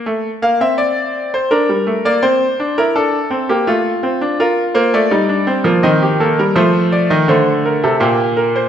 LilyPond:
<<
  \new Staff \with { instrumentName = "Grand piano" } { \time 3/4 \key f \mixolydian \tempo 4 = 83 << { r8 f''16 e''16 d''8. c''16 bes'8. d''16 | c''8. bes'16 a'8. g'16 f'4 | bes'8 c''16 d''4~ d''16 ees''16 g'16 a'16 bes'16 | c''8 d''16 ees''16 c''8 bes'16 a'16 g'8 bes'16 c''16 | } \\ { a8 bes16 c'4~ c'16 d'16 g16 a16 bes16 | c'8 d'16 e'16 d'8 c'16 bes16 a8 c'16 d'16 | f'4 ees'16 d'16 c'16 bes16 c'8 bes8 | a4 a4 bes4 | } >> }
  \new Staff \with { instrumentName = "Grand piano" } { \clef bass \time 3/4 \key f \mixolydian r2. | r2. | r8 bes16 a16 g8. f16 ees8. g16 | f8. ees16 d8. c16 bes,4 | }
>>